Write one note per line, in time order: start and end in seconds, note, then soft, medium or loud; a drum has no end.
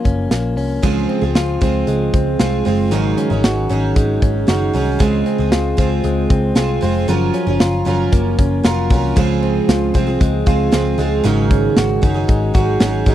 0.00 0.83 F3 medium
0.00 0.30 A#3 medium
0.00 1.35 F4 medium
0.05 0.27 F#1 medium
0.05 0.57 C#4 medium
0.05 kick medium
0.05 closed hi-hat medium
0.31 0.57 A#1 medium
0.31 0.88 A#3 medium
0.31 snare loud
0.31 closed hi-hat medium
0.57 0.78 C2 medium
0.57 1.09 C#4 medium
0.57 open hi-hat medium
0.83 1.05 C#2 medium
0.83 1.22 C#3 medium
0.83 2.91 F3 medium
0.83 1.22 G#3 medium
0.83 1.23 C4 medium
0.83 1.22 F4 medium
0.83 1.20 G#4 medium
0.83 kick loud
0.83 crash medium
1.09 1.60 C4 medium
1.09 closed hi-hat medium
1.21 1.33 C#2 medium
1.21 1.60 C4 soft
1.21 1.62 F4 soft
1.21 1.61 G#4 medium
1.35 1.57 C#2 loud
1.35 2.38 F4 medium
1.35 snare loud
1.35 closed hi-hat medium
1.61 1.83 C#2 medium
1.61 2.39 G#3 medium
1.61 2.12 C4 medium
1.61 2.39 C4 medium
1.61 2.40 F4 medium
1.61 2.42 G#4 medium
1.61 kick medium
1.61 closed hi-hat medium
1.87 2.09 C#2 medium
1.87 3.47 G#3 medium
1.87 closed hi-hat medium
2.14 2.35 C#2 medium
2.14 2.64 C4 medium
2.14 kick medium
2.14 closed hi-hat medium
2.39 2.61 C2 medium
2.39 2.64 G#3 medium
2.39 2.65 C4 medium
2.39 2.97 F4 medium
2.39 2.66 F4 medium
2.39 2.67 G#4 medium
2.39 snare loud
2.39 closed hi-hat medium
2.65 2.92 F#1 medium
2.65 2.91 G#3 medium
2.65 2.97 C4 medium
2.65 2.92 C4 medium
2.65 2.93 F4 medium
2.65 2.92 G#4 medium
2.65 open hi-hat medium
2.91 3.14 G#1 medium
2.91 3.30 G#2 medium
2.91 3.31 C#3 medium
2.91 5.00 D#3 medium
2.91 3.31 F#3 medium
2.91 3.31 C#4 medium
2.91 3.30 D#4 medium
2.91 3.29 G#4 loud
2.91 closed hi-hat medium
3.17 3.70 C#4 medium
3.17 closed hi-hat medium
3.30 3.42 G#1 medium
3.30 3.68 F#3 soft
3.30 3.69 C#4 medium
3.30 3.70 D#4 soft
3.30 3.70 G#4 medium
3.44 4.47 F#4 medium
3.44 snare loud
3.44 closed hi-hat medium
3.69 3.92 G#1 medium
3.69 4.46 F#3 medium
3.69 4.22 C#4 medium
3.69 4.47 C#4 medium
3.69 4.48 D#4 medium
3.69 4.50 G#4 medium
3.69 closed hi-hat medium
3.96 4.17 G#1 medium
3.96 5.00 G#3 medium
3.96 kick medium
3.96 closed hi-hat medium
4.22 4.44 G#1 medium
4.22 4.74 C#4 medium
4.22 kick medium
4.22 closed hi-hat medium
4.47 4.70 F#1 medium
4.47 4.72 F#3 medium
4.47 4.73 C#4 medium
4.47 4.74 D#4 medium
4.47 5.06 F#4 medium
4.47 4.75 G#4 medium
4.47 snare loud
4.47 closed hi-hat medium
4.73 4.96 C2 medium
4.73 4.99 F#3 medium
4.73 5.26 C#4 medium
4.73 5.00 C#4 medium
4.73 5.01 D#4 medium
4.73 5.00 G#4 medium
4.73 open hi-hat medium
4.99 5.22 C#2 medium
4.99 5.39 C#3 medium
4.99 5.39 G#3 medium
4.99 6.03 G#3 medium
4.99 5.39 C4 medium
4.99 5.39 F4 medium
4.99 5.37 G#4 loud
4.99 kick loud
4.99 closed hi-hat medium
5.26 5.77 C4 medium
5.26 closed hi-hat medium
5.38 5.50 C#2 medium
5.38 5.77 C4 soft
5.38 5.78 F4 medium
5.38 5.78 G#4 medium
5.52 5.74 C#2 loud
5.52 6.56 F4 medium
5.52 snare loud
5.52 closed hi-hat medium
5.77 6.00 C#2 medium
5.77 6.54 G#3 medium
5.77 6.55 C4 medium
5.77 6.29 C4 medium
5.77 6.57 F4 medium
5.77 6.57 G#4 medium
5.77 kick medium
5.77 closed hi-hat medium
6.04 6.26 C#2 loud
6.04 7.14 G#3 medium
6.04 closed hi-hat medium
6.30 6.52 C#2 loud
6.30 6.81 C4 medium
6.30 kick medium
6.30 closed hi-hat medium
6.55 6.78 C2 medium
6.55 6.80 G#3 medium
6.55 6.81 C4 medium
6.55 7.60 F4 medium
6.55 6.82 F4 medium
6.55 6.83 G#4 medium
6.55 snare loud
6.55 closed hi-hat medium
6.81 7.04 F1 medium
6.81 7.07 G#3 medium
6.81 7.08 C4 medium
6.81 7.14 C4 medium
6.81 7.08 F4 medium
6.81 7.09 G#4 medium
6.81 open hi-hat medium
7.08 7.30 F#1 loud
7.08 9.16 F3 medium
7.08 7.47 F#3 medium
7.08 7.48 C#4 loud
7.08 7.47 F4 medium
7.08 7.45 A#4 medium
7.08 closed hi-hat medium
7.34 7.86 C#4 medium
7.34 closed hi-hat medium
7.47 7.58 F#1 loud
7.47 7.85 C#4 soft
7.47 7.86 F4 medium
7.47 7.86 A#4 medium
7.60 7.82 F#1 loud
7.60 8.64 F4 medium
7.60 snare loud
7.60 closed hi-hat medium
7.85 8.08 F#1 medium
7.85 8.62 F#3 medium
7.85 8.65 C#4 medium
7.85 8.38 C#4 medium
7.85 8.66 F4 medium
7.85 8.65 A#4 medium
7.85 closed hi-hat medium
8.12 8.34 F#1 loud
8.12 9.22 A#3 medium
8.12 kick medium
8.12 closed hi-hat medium
8.39 8.60 F#1 medium
8.39 8.90 C#4 medium
8.39 kick medium
8.39 closed hi-hat medium
8.63 8.92 F1 medium
8.63 8.89 F#3 medium
8.63 8.90 C#4 medium
8.63 9.69 F4 medium
8.63 8.91 F4 medium
8.63 8.92 A#4 medium
8.63 snare loud
8.63 closed hi-hat medium
8.90 9.12 C2 medium
8.90 9.16 F#3 medium
8.90 9.43 C#4 medium
8.90 9.17 C#4 medium
8.90 9.16 F4 medium
8.90 9.18 A#4 medium
8.90 kick medium
8.90 open hi-hat medium
9.16 9.59 C#2 loud
9.16 9.94 C#3 medium
9.16 11.24 F3 medium
9.16 9.93 G#3 medium
9.16 9.94 C4 medium
9.16 9.95 F4 medium
9.16 9.97 G#4 medium
9.16 kick loud
9.16 crash medium
9.43 9.94 C4 medium
9.43 closed hi-hat medium
9.69 9.90 C#2 loud
9.69 10.46 F4 medium
9.69 snare loud
9.69 closed hi-hat medium
9.94 10.16 C2 medium
9.94 10.07 G#3 medium
9.94 10.72 C4 medium
9.94 10.08 C4 medium
9.94 10.07 F4 medium
9.94 10.05 G#4 medium
9.94 kick medium
9.94 closed hi-hat medium
10.07 10.46 C4 soft
10.07 10.47 F4 soft
10.07 10.46 G#4 medium
10.21 10.42 C#2 loud
10.21 10.98 G#3 medium
10.21 kick medium
10.21 closed hi-hat medium
10.46 10.68 C#2 medium
10.46 10.70 G#3 medium
10.46 10.72 C4 medium
10.46 11.30 F4 medium
10.46 10.73 F4 medium
10.46 10.74 G#4 medium
10.46 kick medium
10.46 closed hi-hat medium
10.72 10.94 C#2 loud
10.72 10.96 G#3 medium
10.72 11.30 C4 medium
10.72 10.98 C4 medium
10.72 10.99 F4 medium
10.72 11.00 G#4 medium
10.72 snare loud
10.72 closed hi-hat medium
10.98 11.20 C#2 loud
10.98 11.24 G#3 medium
10.98 11.80 G#3 medium
10.98 11.25 C4 medium
10.98 11.25 F4 medium
10.98 11.25 G#4 medium
10.98 closed hi-hat medium
11.24 11.67 G#1 medium
11.24 12.02 G#2 medium
11.24 12.02 C#3 medium
11.24 13.15 D#3 medium
11.24 12.00 F#3 medium
11.24 12.03 C#4 medium
11.24 12.03 D#4 medium
11.24 12.05 G#4 medium
11.24 closed hi-hat medium
11.51 12.02 C#4 medium
11.51 kick medium
11.51 closed hi-hat medium
11.77 11.98 G#1 loud
11.77 12.53 F#4 medium
11.77 snare loud
11.77 closed hi-hat medium
12.02 12.24 F#1 medium
12.02 12.15 F#3 medium
12.02 12.80 C#4 medium
12.02 12.15 C#4 medium
12.02 12.14 D#4 medium
12.02 12.13 G#4 medium
12.02 kick medium
12.02 closed hi-hat medium
12.14 12.53 F#3 soft
12.14 12.54 C#4 soft
12.14 12.54 D#4 medium
12.14 12.54 G#4 medium
12.28 12.50 G#1 medium
12.28 13.06 G#3 medium
12.28 kick medium
12.28 closed hi-hat medium
12.54 12.76 G#1 medium
12.54 12.79 F#3 medium
12.54 12.80 C#4 medium
12.54 12.81 D#4 medium
12.54 13.15 F#4 medium
12.54 12.82 G#4 medium
12.54 kick medium
12.54 closed hi-hat medium
12.80 13.02 G#1 loud
12.80 13.05 F#3 medium
12.80 13.15 C#4 medium
12.80 13.06 C#4 medium
12.80 13.07 D#4 medium
12.80 13.08 G#4 medium
12.80 snare loud
12.80 closed hi-hat medium
13.06 13.15 G#1 loud
13.06 13.15 F#3 medium
13.06 13.15 G#3 medium
13.06 13.15 C#4 medium
13.06 13.15 D#4 medium
13.06 13.15 G#4 medium
13.06 kick medium
13.06 closed hi-hat medium